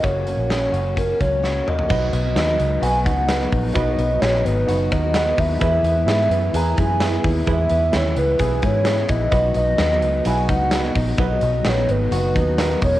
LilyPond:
<<
  \new Staff \with { instrumentName = "Soft synth lead" } { \time 4/4 \key b \major \tempo 4 = 129 cis''4 cis''4 ais'8 cis''4 dis''8~ | dis''8 dis''4. gis''8 fis''4 r8 | dis''4 cis''8 b'4 dis''4 e''8~ | e''8 e''4. ais''8 gis''4 r8 |
e''4 cis''8 b'4 cis''4 dis''8~ | dis''8 dis''4. gis''8 fis''4 r8 | dis''4 cis''8 b'4 b'4 cis''8 | }
  \new Staff \with { instrumentName = "Upright piano" } { \time 4/4 \key b \major r1 | <dis' fis' b'>8. r16 <dis' fis' b'>8. r16 <dis' fis' b'>8. r16 <dis' fis' b'>8. r16 | <dis' fis' b'>8. r16 <dis' fis' b'>8. r16 <dis' fis' b'>8. r16 <dis' fis' b'>8. r16 | <e' gis' b'>8. r16 <e' gis' b'>8. r16 <e' gis' b'>8. r16 <e' gis' b'>8. r16 |
<e' gis' b'>8. r16 <e' gis' b'>8. r16 <e' gis' b'>8. r16 <e' gis' b'>8. r16 | <dis' fis' b'>8. r16 <dis' fis' b'>8. r16 <dis' fis' b'>8. r16 <dis' fis' b'>8. r16 | <dis' fis' b'>8. r16 <dis' fis' b'>8. r16 <dis' fis' b'>8. r16 <dis' fis' ais'>8. r16 | }
  \new Staff \with { instrumentName = "Clean electric guitar" } { \time 4/4 \key b \major <ais cis' fis'>8 ais8 cis'8 fis'8 cis'8 ais8 fis'8 ais8 | fis8 b8 dis'8 b8 fis'8 dis'8 b8 dis'8 | fis8 b8 dis'8 b8 fis'8 dis'8 b8 dis'8 | e8 b8 e'8 b8 gis'8 e'8 b8 e'8 |
e8 b8 e'8 b8 gis'8 e'8 b8 e'8 | fis8 b8 dis'8 b8 e'16 fis'16 dis'8 b8 dis'8 | fis8 b8 dis'8 b8 fis'8 dis'8 b8 dis'8 | }
  \new Staff \with { instrumentName = "Steel-string acoustic guitar" } { \time 4/4 \key b \major <fis, cis fis ais cis'>8 <cis fis ais cis'>4 <cis fis ais cis'>4 <cis fis ais cis'>8 <cis fis ais cis'>8 <cis fis ais cis'>8 | <b, fis b dis'>8. <fis b dis'>8 <fis b dis'>8. <b, fis b dis'>8 <b, fis b dis'>8. <fis b dis'>8. | <b, fis b dis'>8. <fis b dis'>8 <fis b dis'>8. <b, fis b dis'>8 <b, fis b dis'>8. <fis b dis'>8. | <e gis b e'>8. <gis b e'>8 <gis b e'>8. <e gis b e'>8 <e gis b e'>8. <gis b e'>8. |
<e gis b e'>8. <gis b e'>8 <gis b e'>8. <e gis b e'>8 <e gis b e'>8. <gis b e'>8. | <b, fis b dis'>8. <fis b dis'>8 <fis b dis'>8. <b, fis b dis'>8 <b, fis b dis'>8. <fis b dis'>8. | <b, fis b dis'>8. <fis b dis'>8 <fis b dis'>8. <b, fis b dis'>8 <b, fis b dis'>8. <fis b dis'>8. | }
  \new Staff \with { instrumentName = "Fingered electric bass" } { \clef bass \time 4/4 \key b \major fis,,8. ais,,8. fis,,4 cis,4 r8 | b,,8 b,,8 dis,8 cis,8 b,,8 cis,4 ais,,8 | b,,8 b,,8 ais,,8 gis,,8 fis,,8 dis,4 dis,8 | e,8 e,8 gis,8 fis,8 e,8 fis,4 dis,8 |
e,8 e,8 dis,8 cis,8 b,,8 gis,4 ais,,8 | b,,8 b,,8 dis,8 cis,8 b,,8 cis,4 ais,,8 | b,,8 b,,8 ais,,8 gis,,8 fis,,8 dis,4 e,,8 | }
  \new DrumStaff \with { instrumentName = "Drums" } \drummode { \time 4/4 <hh bd>8 hh8 <hh sn>8 hh8 <hh bd>8 <hh bd>8 sn8 toml16 tomfh16 | <cymc bd>8 hh8 <hh sn>8 hh8 hh8 <hh bd>8 <hh sn>8 <hho bd>8 | <hh bd>8 hh8 <hh sn>8 hh8 hh8 <hh bd>8 <hh sn>8 <hho bd>8 | <hh bd>8 hh8 <hh sn>8 hh8 hh8 <hh bd>8 <hh sn>8 <hho bd>8 |
<hh bd>8 hh8 <hh sn>8 hh8 <hh bd>8 <hh bd>8 <hh sn>8 <hh bd>8 | <hh bd>8 hh8 <hh sn>8 hh8 hh8 <hh bd>8 <hh sn>8 <hho bd>8 | <hh bd>8 hh8 <hh sn>8 hh8 hh8 <hh bd>8 <hh sn>8 <hho bd>8 | }
>>